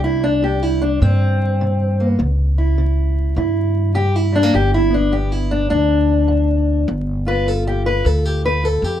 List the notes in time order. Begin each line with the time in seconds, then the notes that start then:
Already playing: C2 C3
0.04 E4
0.24 D4
0.42 C3 G4
0.63 E4
0.82 D4
1.02 G2 C3 C4
1.61 C3
2.00 A#3
2.19 C#2 C#3
2.58 E4
2.78 C#3
3.36 G2 C#3 E4
3.95 C#3 G4
4.16 E4
4.32 G3 D4
4.43 A#3
4.54 G1 G2 G4
4.74 E4
4.90 B3
4.94 D4
5.12 G2 G4
5.32 E4
5.51 D4
5.70 D2 G2 D4
6.28 G2
6.88 G1 G2
7.26 F4 B4
7.46 G2 A4
7.67 G4
7.86 B4
8.04 D2 G2 A4
8.25 G4
8.45 B4
8.63 G2 A4
8.82 F2 G4